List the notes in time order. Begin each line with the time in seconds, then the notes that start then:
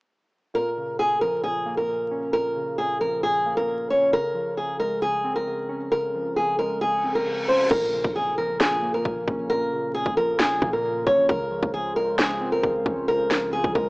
0.54 A#2 A#4
0.77 C#3
0.99 A#2 G#4
1.21 F3 A#4
1.44 A#2 G#4
1.66 A#3
1.77 A#4
1.89 A#2
2.11 C#4
2.33 A#2 A#4
2.56 C#3
2.78 A#2 G#4
3.01 F3 A#4
3.23 A#2 G#4
3.46 A#3
3.57 A#4
3.68 A#2
3.90 C#4 C#5
4.12 C#3 A#4
4.34 F3
4.57 C#3 G#4
4.79 G#3 A#4
5.02 C#3 G#4
5.24 C4
5.36 A#4
5.47 C#3
5.69 C#4
5.91 C#3 A#4
6.15 F3
6.36 C#3 G#4
6.59 G#3 A#4
6.81 C#3 G#4, reverse cymbal
7.04 C4
7.15 A#4
7.26 C#3
7.48 C#4 C5
7.70 A#1 A#2 C#3 A#3 F4 A#4, kick, crash, impact
7.93 C#3
8.04 A#1, kick
8.16 A#2 G#4
8.38 F3 A#4
8.60 A#2 G#4, snare
8.82 A#3
8.94 A#4
9.05 A#1 A#2, kick
9.28 A#1 C#4, kick
9.50 A#2 A#4
9.72 C#3
9.95 A#2 G#4
10.06 A#1, kick
10.17 F3 A#4
10.39 A#2 G#4, snare
10.62 A#2 A#3, kick
10.73 A#4
10.84 A#2
11.06 A#1 C#4 C#5, kick
11.29 C#2 C#3 A#4 C5, kick
11.50 F3
11.63 C#2, kick
11.74 C#3 G#4
11.96 G#3 A#4
12.18 C#3 G#4, snare
12.41 C4
12.52 A#4
12.63 C#2 C#3, kick
12.85 C#2 C#4, kick
13.08 C#3 A#4
13.31 F3, snare
13.52 C#3 G#4
13.64 C2, kick
13.75 C#2 G#3 A#4, kick